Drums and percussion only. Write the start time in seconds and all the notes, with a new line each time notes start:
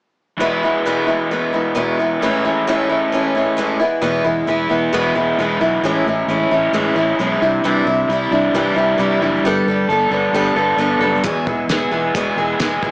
11.24 kick, closed hi-hat
11.47 kick
11.69 snare, closed hi-hat
12.15 kick, closed hi-hat
12.60 kick, snare, closed hi-hat
12.83 kick